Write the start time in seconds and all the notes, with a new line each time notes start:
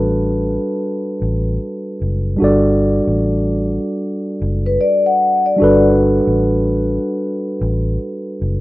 Already playing: A1 G3 D4 F#4 A4 B4 A5
1.22 A1
2.01 F#1
2.37 G3 D4 F#4
2.42 G1 A4 D5
3.07 A1
4.41 F#1
4.66 B4
4.81 D5
5.06 F#5
5.46 D5
5.56 G3 D4 F#4
5.62 G1 A4 B4
6.27 A1
7.61 A1
8.42 F#1